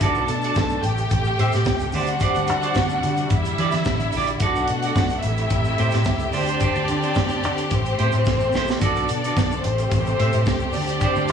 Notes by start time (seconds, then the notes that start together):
0.00 B1 B2 A3 D4 F#4 A4 D5 A5, kick, closed hi-hat, muted conga, shaker
0.15 B1, shaker
0.28 B2, muted clean electric guitar stroke, closed hi-hat, shaker
0.42 F#4 A4 D5, closed hi-hat, shaker
0.55 B1, muted clean electric guitar stroke, kick, snare, high conga, shaker
0.69 muted clean electric guitar stroke, shaker
0.83 A1 C3 G4 G5, closed hi-hat, muted conga, low conga
0.97 muted clean electric guitar stroke, closed hi-hat, shaker
1.10 A1, kick, closed hi-hat, muted conga, shaker
1.24 muted clean electric guitar stroke, shaker
1.38 A2 G4 C5 E5, closed hi-hat, muted conga
1.52 A2, muted clean electric guitar stroke, snare, closed hi-hat, shaker
1.65 C#2, muted clean electric guitar stroke, kick, snare, high conga, shaker
1.79 muted clean electric guitar stroke, closed hi-hat, shaker
1.92 D2 G3 D4 F#4 G4 C5 F#5, open hi-hat, high conga, shaker
1.96 D5
2.06 muted clean electric guitar stroke, closed hi-hat, shaker
2.19 G4 C5 D5, kick, closed hi-hat, muted conga, shaker
2.35 D2, closed hi-hat, shaker
2.47 D3, muted clean electric guitar stroke, closed hi-hat, shaker
2.62 G4 C5 D5, closed hi-hat, shaker
2.74 D2, muted clean electric guitar stroke, kick, snare, high conga, shaker
2.89 muted clean electric guitar stroke, shaker
3.03 D3, closed hi-hat, muted conga, low conga
3.16 muted clean electric guitar stroke, closed hi-hat, shaker
3.30 E2 D3 E4 E5, kick, closed hi-hat, muted conga, shaker
3.45 muted clean electric guitar stroke, closed hi-hat, shaker
3.58 E3 E4 G4 D5, closed hi-hat
3.71 E3, muted clean electric guitar stroke, snare, closed hi-hat, shaker
3.84 A1, muted clean electric guitar stroke, kick, snare, high conga, shaker
4.00 closed hi-hat, shaker
4.04 muted clean electric guitar stroke
4.12 A#1, open hi-hat, high conga, shaker
4.16 E4 G4 D5
4.27 muted clean electric guitar stroke, closed hi-hat, shaker
4.40 B1 B2 A3 D4 F#4 A4 D5 F#5, kick, closed hi-hat, muted conga, shaker
4.55 B1, shaker
4.68 B2, muted clean electric guitar stroke, closed hi-hat, shaker
4.83 F#4 A4 D5, closed hi-hat, shaker
4.96 B1, muted clean electric guitar stroke, kick, snare, high conga, shaker
5.09 muted clean electric guitar stroke, closed hi-hat, shaker
5.21 A1 C3 E4 G4 E5, closed hi-hat, muted conga, low conga
5.37 muted clean electric guitar stroke, closed hi-hat, shaker
5.50 A1, kick, closed hi-hat, muted conga, shaker
5.64 muted clean electric guitar stroke, shaker
5.78 A2 E4 G4 C5, closed hi-hat, muted conga
5.91 A2, muted clean electric guitar stroke, snare, closed hi-hat, shaker
6.04 C#2, muted clean electric guitar stroke, kick, snare, high conga, shaker
6.19 muted clean electric guitar stroke, closed hi-hat, shaker
6.32 D2 D3 C4 D4 G4 C5 D5, open hi-hat, high conga, shaker
6.47 D4 G4 C5, closed hi-hat, shaker
6.60 D4 G4 C5, kick, closed hi-hat, muted conga, shaker
6.75 D2, closed hi-hat, shaker
6.88 D3, muted clean electric guitar stroke, closed hi-hat, shaker
7.03 D4 G4 C5, closed hi-hat, shaker
7.15 D2, muted clean electric guitar stroke, kick, snare, high conga, shaker
7.29 muted clean electric guitar stroke, closed hi-hat, shaker
7.43 D3, closed hi-hat, muted conga, low conga
7.58 muted clean electric guitar stroke, closed hi-hat, shaker
7.70 A1 C3 A3 C4 C5, kick, closed hi-hat, muted conga, shaker
7.85 muted clean electric guitar stroke, closed hi-hat, shaker
7.98 A2 E4 G4 C5, closed hi-hat
8.12 A2, muted clean electric guitar stroke, closed hi-hat, shaker
8.25 A1, muted clean electric guitar stroke, kick, snare, high conga, shaker
8.40 muted clean electric guitar stroke, shaker
8.52 A#1 E4 G4 C5, snare, high conga, shaker
8.67 muted clean electric guitar stroke, snare, shaker
8.81 B1 D3 B3 D4 F#4 A4 D5, kick, closed hi-hat, muted conga, shaker
8.96 B1, closed hi-hat, shaker
9.08 B2, muted clean electric guitar stroke, closed hi-hat, shaker
9.24 F#4 A4 D5, closed hi-hat, shaker
9.37 B1, muted clean electric guitar stroke, kick, snare, high conga, shaker
9.51 muted clean electric guitar stroke, shaker
9.63 A1 C3 A3 C4 G4 C5, closed hi-hat, muted conga, low conga
9.78 muted clean electric guitar stroke, closed hi-hat, shaker
9.91 A1, kick, closed hi-hat, muted conga, shaker
10.06 muted clean electric guitar stroke, shaker
10.19 A2 G4 C5 E5, closed hi-hat
10.33 A2, muted clean electric guitar stroke, closed hi-hat, shaker
10.45 C#2, muted clean electric guitar stroke, kick, snare, high conga, shaker
10.60 muted clean electric guitar stroke, shaker
10.73 D2 D3 C4 D4 D5, open hi-hat, high conga, shaker
10.87 muted clean electric guitar stroke, closed hi-hat, shaker
11.00 G4 C5 D5, kick, closed hi-hat, muted conga, shaker
11.16 D2, shaker
11.28 closed hi-hat, shaker